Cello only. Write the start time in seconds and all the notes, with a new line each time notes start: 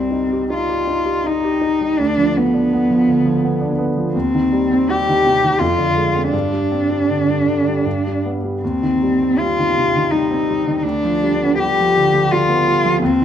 Already playing: C4
0.53 F4
1.26 D#4
1.99 D4
2.37 B3
4.14 C4
4.90 G4
5.58 F4
6.31 D4
8.62 C4
9.38 F4
10.11 D#4
10.78 D#4
10.84 D4
11.59 G4
12.31 F4
13.03 C4